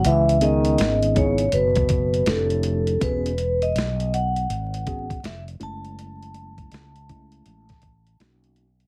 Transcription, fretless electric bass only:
X:1
M:4/4
L:1/8
Q:"Swing 16ths" 1/4=81
K:F#mix
V:1 name="Fretless electric bass" clef=bass
C,,2 G,,,2 F,,,2 =F,,,2 | E,,,2 B,,,2 G,,,2 ^E,,, F,,,- | F,,,2 C,,2 =A,,,2 z2 |]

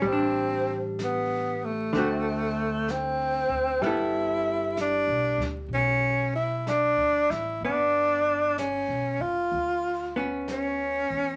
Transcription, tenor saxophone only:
X:1
M:4/4
L:1/8
Q:"Swing" 1/4=63
K:Glyd
V:1 name="Tenor saxophone"
=C z B, A,3 C2 | E2 D z C E D E | D2 C =F2 z C2 |]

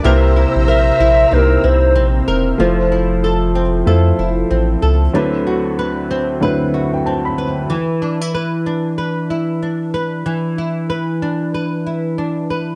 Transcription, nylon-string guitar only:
X:1
M:4/4
L:1/16
Q:"Swing 16ths" 1/4=94
K:Em
V:1 name="Nylon-string guitar"
[C,_B]2 E2 B2 E2 C2 E2 C2 B2 | =F,2 E2 A2 C2 A2 E2 C2 A2 | D,2 F2 B2 C2 B2 F2 C2 B2 | E,2 D E B2 D2 B2 E2 D2 B2 |
E,2 E2 B2 D2 B2 E2 D2 B2 |]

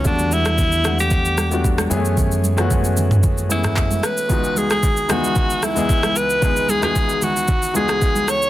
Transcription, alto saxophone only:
X:1
M:4/4
L:1/16
Q:1/4=113
K:F#dor
V:1 name="Alto saxophone"
=D2 E4- E =G6 z3 | z8 z2 E4 B2- | B2 G G3 F4 E4 B2- | B2 G G3 F4 G4 c2 |]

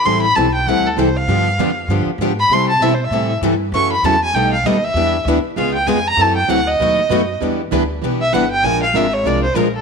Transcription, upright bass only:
X:1
M:4/4
L:1/8
Q:"Swing" 1/4=196
K:Em
V:1 name="Upright bass" clef=bass
A,,,2 B,,,2 D,,2 C,,2 | G,,2 =F,,2 G,, z _A,,2 | C,2 B,,2 A,,2 G,,2 | F,,2 E,,2 B,,,2 ^D,,2 |
E,,2 D,, z ^C,,2 ^E,,2 | F,,2 D,,2 ^D,,2 F,,2 | E,,2 D,,2 B,,,2 G,,,2 | ^A,,,2 ^G,,,2 ^B,,,2 A,,,2 |]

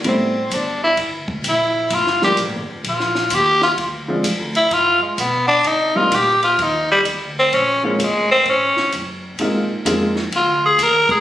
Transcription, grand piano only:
X:1
M:4/4
L:1/8
Q:"Swing" 1/4=128
K:Gphr
V:1 name="Grand piano"
[G,=A,_C=C=E] z6 z | z [F,G,B,DF] z6 | z [F,A,CDF] z6 | z [G,B,CDE] z6 |
z [A,B,C_DF] z6 | [A,B,CEF] z [A,B,CEF] z4 z |]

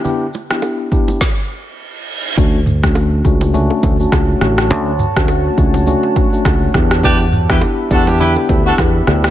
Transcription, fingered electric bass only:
X:1
M:4/4
L:1/16
Q:"Swing 16ths" 1/4=103
K:D
V:1 name="Fingered electric bass" clef=bass
z16 | D,,6 C,,4 D,,2 C,,2 A,,,2 | D,,3 D,,3 C,,3 z3 C,,2 E,,2- | E,,6 E,,4 D,,2 E,,2 D,,2 |]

